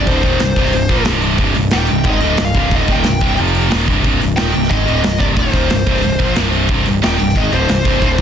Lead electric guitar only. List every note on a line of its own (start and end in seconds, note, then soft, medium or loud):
0.07 1.06 C5 medium
1.73 2.04 G5 loud
2.10 2.42 D#5 medium
2.45 2.76 F5 medium
2.76 2.89 D#5 medium
2.92 3.37 G5 medium
4.37 4.71 G5 loud
4.70 5.16 D#5 medium
5.20 5.25 D5 medium
5.38 6.32 C5 medium
7.04 7.37 G5 loud
7.37 7.53 D#5 medium
7.54 8.21 C5 medium